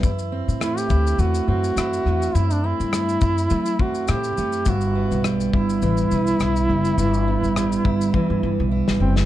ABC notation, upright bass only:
X:1
M:4/4
L:1/16
Q:"Swing 16ths" 1/4=104
K:Em
V:1 name="Upright bass" clef=bass
F,,3 A,,3 D,,2 E,,2 F,,2 F,,2 E,,2 | F,,3 G,,3 F,,2 F,2 F,,2 A,,2 F,,2 | G,,,3 B,,,3 G,,,2 A,,,2 B,,,2 B,,,2 F,,,2 | G,,,3 A,,,3 G,,,2 z G,, G,,, B,,,2 A,,, F,,,2 |]